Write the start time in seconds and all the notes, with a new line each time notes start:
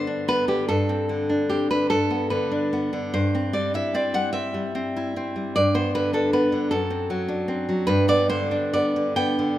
Already playing: G2 D3 B3 C5
0.07 D4
0.28 B3 B4
0.48 D3 G4
0.69 G2 A4
0.89 C4
1.09 D3
1.29 D4
1.49 C4 G4
1.71 D3 B4
1.90 G2 A4
2.10 B3
2.30 D3 B4
2.52 D4
2.73 B3
2.93 D3
3.14 G2 C5
3.35 C4
3.53 G3 D5
3.74 E4 E5
3.94 C4 D5
4.14 G3 F#5
4.33 C4 E5
4.54 G3
4.75 C4
4.96 E4
5.16 C4
5.36 G3
5.56 G2 D5
5.74 B3 C5
5.95 D3 B4
6.13 D4 A4
6.33 B3 B4
6.52 D3
6.71 F#2 A4
6.90 C4
7.10 F#3
7.28 D4
7.48 C4
7.69 F#3
7.87 G2 B4
8.08 B3 D5
8.29 D3 C5
8.51 D4
8.73 B3 D5
8.96 D3
9.16 B3 G5
9.39 D3